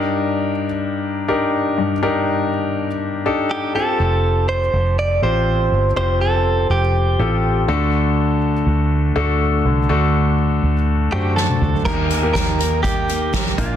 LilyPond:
<<
  \new Staff \with { instrumentName = "Clean electric guitar" } { \time 4/4 \key ees \lydian \tempo 4 = 122 r1 | r2. g'8 a'8~ | a'4 c''4 d''8 c''4. | c''8 a'4 g'2 r8 |
r1 | r2 r8 g'8 a'4 | bes'4 bes'4 g'4. f'8 | }
  \new Staff \with { instrumentName = "Grand piano" } { \time 4/4 \key ees \lydian <d' ees' g' bes'>4~ <d' ees' g' bes'>16 r4 r16 <d' ees' g' bes'>4~ <d' ees' g' bes'>16 r16 | <d' ees' g' bes'>4.~ <d' ees' g' bes'>16 r8. <d' ees' g' a'>4 <c' f' g' a'>8~ | <c' f' g' a'>4~ <c' f' g' a'>16 r4 r16 <c' f' g' c''>4~ <c' f' g' c''>16 r16 | <c' f' g' c''>4.~ <c' f' g' c''>16 r8. <c' f' g' a'>4 <a d' fis' a'>8~ |
<a d' fis' a'>4~ <a d' fis' a'>16 r4 r16 <a d' fis' a'>4~ <a d' fis' a'>16 r16 | <a d' fis' a'>4.~ <a d' fis' a'>16 r8. <a d' fis' c''>4~ <a d' fis' c''>16 r16 | <bes ees' g' bes'>8. <bes ees' g' bes'>4.~ <bes ees' g' bes'>16 r4 <bes d' f' bes'>8 | }
  \new Staff \with { instrumentName = "Grand piano" } { \clef bass \time 4/4 \key ees \lydian g,4 r2 r8 g,8~ | g,4 r2. | r1 | r2. r8 d8~ |
d4 r2 r8 d8~ | d4 r2 a''4 | ees4. r2 bes,8 | }
  \new Staff \with { instrumentName = "Steel-string acoustic guitar" } { \time 4/4 \key ees \lydian r1 | r1 | r1 | r1 |
r1 | r1 | <ees g bes ees' bes'>8 <bes ees' bes'>8 <ees g bes bes'>8 <bes ees' bes'>8 <g bes ees' bes'>8 <bes ees' bes'>8 <ees g bes ees' bes'>8 <f bes d' bes'>8 | }
  \new Staff \with { instrumentName = "Fingered electric bass" } { \clef bass \time 4/4 \key ees \lydian r1 | r1 | f,,4. f,,4 a,,4 g,,8 | f,,4. f,,4 a,,4 d,8~ |
d,4. d,4 d,4 c,8 | d,4. d,4 fis,4 d,8 | ees,4 r2 c,8 bes,,8 | }
  \new DrumStaff \with { instrumentName = "Drums" } \drummode { \time 4/4 r4 r4 r4 r4 | r4 r4 r4 r4 | r4 r4 r4 r4 | r4 r4 r4 r4 |
r4 r4 r4 r4 | r4 r4 r4 sn16 tommh16 toml16 tomfh16 | <cymc bd>8 hh8 <hh bd sn>8 hh8 <hh bd>8 hh8 <hh bd sn>16 <sn tomfh>16 <hh bd tomfh>8 | }
>>